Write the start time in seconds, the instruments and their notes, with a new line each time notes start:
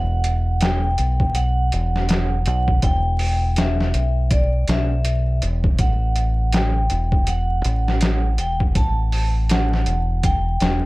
Already playing: fingered electric bass E1, vibraphone F#5
0.24 closed hi-hat
0.61 vibraphone G5, snare, closed hi-hat
0.98 fingered electric bass B1, closed hi-hat
1.20 kick
1.35 vibraphone F#5, closed hi-hat
1.72 fingered electric bass E1, closed hi-hat
1.96 snare
2.09 snare, closed hi-hat
2.46 fingered electric bass B1, vibraphone F#5, closed hi-hat
2.68 kick
2.82 fingered electric bass E1, vibraphone G5, kick, closed hi-hat
3.19 open hi-hat
3.56 vibraphone E5, snare, closed hi-hat
3.81 snare
3.94 fingered electric bass B1, closed hi-hat
4.31 vibraphone D5, kick, closed hi-hat
4.68 fingered electric bass B1, vibraphone E5, snare, closed hi-hat
5.05 closed hi-hat
5.42 fingered electric bass E1, closed hi-hat
5.64 kick
5.78 fingered electric bass A1, vibraphone F#5, kick, closed hi-hat
6.16 closed hi-hat
6.53 vibraphone G5, snare, closed hi-hat
6.90 fingered electric bass E1, closed hi-hat
7.12 kick
7.27 vibraphone F#5, closed hi-hat
7.64 fingered electric bass A1, closed hi-hat
7.88 snare
8.01 snare, closed hi-hat
8.38 fingered electric bass E1, vibraphone G5, closed hi-hat
8.60 kick
8.75 fingered electric bass A1, vibraphone A5, kick, closed hi-hat
9.12 open hi-hat
9.49 vibraphone F#5, snare, closed hi-hat
9.73 snare
9.86 fingered electric bass E1, closed hi-hat
10.23 vibraphone G5, kick, closed hi-hat
10.60 fingered electric bass E1, snare, closed hi-hat